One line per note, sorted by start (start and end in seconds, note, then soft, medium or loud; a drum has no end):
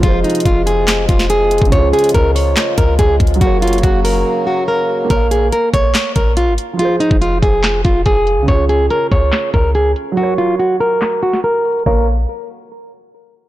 0.00 0.23 F1 loud
0.00 1.71 C3 medium
0.00 1.66 F3 medium
0.00 3.37 F3 medium
0.00 1.71 G#3 medium
0.00 3.37 F4 medium
0.00 1.68 F4 medium
0.00 0.19 F4 medium
0.00 kick loud
0.00 closed hi-hat medium
0.05 1.70 G#4 medium
0.05 1.72 C5 medium
0.24 0.40 D#4 medium
0.24 closed hi-hat soft
0.30 closed hi-hat medium
0.35 closed hi-hat medium
0.40 closed hi-hat medium
0.46 1.06 F1 loud
0.46 0.61 F4 medium
0.46 kick loud
0.46 closed hi-hat medium
0.66 1.06 G#4 medium
0.66 closed hi-hat medium
0.88 snare loud
0.88 clap loud
0.88 closed hi-hat medium
1.09 1.60 F1 loud
1.09 1.25 F4 medium
1.09 kick loud
1.09 closed hi-hat medium
1.19 snare medium
1.30 1.70 G#4 medium
1.30 closed hi-hat loud
1.51 closed hi-hat medium
1.58 1.72 F1 loud
1.58 kick medium
1.58 closed hi-hat soft
1.65 3.35 C#3 medium
1.65 closed hi-hat soft
1.70 1.92 C#2 loud
1.70 5.07 C#3 medium
1.70 3.40 G#3 medium
1.70 3.37 C#4 medium
1.70 3.39 F4 medium
1.70 1.88 C#5 medium
1.70 kick loud
1.70 closed hi-hat medium
1.78 3.41 G#4 medium
1.93 2.09 G#4 medium
1.93 closed hi-hat soft
1.99 closed hi-hat medium
2.04 closed hi-hat medium
2.09 closed hi-hat medium
2.14 2.55 C#2 loud
2.14 2.30 A#4 medium
2.14 kick loud
2.14 closed hi-hat medium
2.35 2.75 C#5 medium
2.35 open hi-hat medium
2.57 snare loud
2.57 clap loud
2.57 closed hi-hat medium
2.78 2.98 C#2 loud
2.78 2.94 A#4 medium
2.78 kick loud
2.78 closed hi-hat medium
2.99 3.19 C#2 loud
2.99 3.15 G#4 loud
2.99 kick medium
2.99 closed hi-hat loud
3.20 3.40 C#2 loud
3.20 kick loud
3.20 closed hi-hat medium
3.27 closed hi-hat soft
3.34 5.04 F#3 medium
3.34 closed hi-hat soft
3.39 3.82 F#1 loud
3.39 5.09 F#3 medium
3.39 5.09 A#3 medium
3.39 5.06 F#4 medium
3.39 5.09 F#4 medium
3.39 3.57 F#4 loud
3.39 5.07 A#4 medium
3.39 kick loud
3.39 closed hi-hat medium
3.47 5.10 C#5 medium
3.62 3.78 F4 medium
3.62 closed hi-hat medium
3.68 closed hi-hat medium
3.73 closed hi-hat medium
3.78 closed hi-hat soft
3.83 4.24 F#1 loud
3.83 3.99 F#4 medium
3.83 kick loud
3.83 closed hi-hat medium
4.04 4.44 A#4 medium
4.04 open hi-hat medium
4.47 4.63 F#4 medium
4.68 5.08 A#4 medium
5.05 6.73 A#3 medium
5.05 6.75 A#4 medium
5.10 5.51 A#1 loud
5.10 5.26 A#4 medium
5.10 6.77 C#5 medium
5.10 kick loud
5.10 closed hi-hat medium
5.16 6.79 F5 medium
5.31 5.47 G#4 medium
5.31 closed hi-hat medium
5.52 5.68 A#4 medium
5.52 closed hi-hat medium
5.74 5.94 A#1 loud
5.74 6.13 C#5 medium
5.74 kick medium
5.74 closed hi-hat medium
5.95 snare loud
5.95 clap loud
5.95 closed hi-hat medium
6.16 6.49 A#1 loud
6.16 6.32 A#4 medium
6.16 kick loud
6.16 closed hi-hat medium
6.37 6.53 F4 medium
6.37 closed hi-hat medium
6.48 6.58 G#1 loud
6.58 closed hi-hat medium
6.73 8.42 F3 medium
6.73 8.44 F4 medium
6.79 6.95 F4 medium
6.79 8.46 G#4 medium
6.79 closed hi-hat medium
6.85 8.48 C5 medium
7.00 7.16 D#4 medium
7.00 closed hi-hat medium
7.11 7.41 F1 loud
7.11 kick loud
7.22 7.37 F4 medium
7.22 closed hi-hat medium
7.42 7.83 F1 loud
7.42 7.82 G#4 medium
7.42 kick loud
7.42 closed hi-hat medium
7.63 snare loud
7.63 clap medium
7.63 closed hi-hat medium
7.85 8.05 F1 loud
7.85 8.01 F4 medium
7.85 kick medium
7.85 closed hi-hat medium
8.06 8.39 F1 loud
8.06 8.46 G#4 medium
8.06 kick medium
8.06 closed hi-hat medium
8.27 closed hi-hat medium
8.38 8.48 C2 loud
8.43 10.11 C#3 medium
8.43 10.13 C#4 medium
8.48 8.89 C#2 loud
8.48 10.15 F4 medium
8.48 8.64 C#5 medium
8.48 kick loud
8.48 closed hi-hat medium
8.54 10.17 G#4 medium
8.69 8.85 G#4 medium
8.69 closed hi-hat medium
8.90 9.07 A#4 medium
8.90 closed hi-hat medium
9.12 9.32 C#2 loud
9.12 9.51 C#5 medium
9.12 kick loud
9.12 closed hi-hat medium
9.32 snare loud
9.32 clap medium
9.32 closed hi-hat medium
9.54 9.94 C#2 loud
9.54 9.70 A#4 medium
9.54 kick loud
9.54 closed hi-hat medium
9.75 9.91 G#4 loud
9.75 closed hi-hat medium
9.96 closed hi-hat medium
10.12 11.80 F#3 medium
10.12 11.82 F#4 medium
10.17 10.33 F#4 loud
10.17 11.84 A#4 medium
10.17 closed hi-hat medium
10.23 11.85 C#5 medium
10.38 10.54 F4 medium
10.38 closed hi-hat medium
10.59 10.75 F#4 medium
10.59 closed hi-hat medium
10.80 11.20 A#4 medium
10.80 closed hi-hat medium
11.02 snare loud
11.02 clap loud
11.02 closed hi-hat medium
11.23 11.39 F#4 medium
11.23 closed hi-hat medium
11.33 snare medium
11.44 11.84 A#4 medium
11.44 closed hi-hat medium
11.65 closed hi-hat soft
11.72 closed hi-hat medium
11.79 closed hi-hat medium
11.86 12.26 A#1 loud
11.86 12.06 A#3 medium
11.86 12.06 A#4 medium
11.86 12.06 C#5 medium
11.86 12.06 F5 medium
11.86 kick loud
11.86 crash medium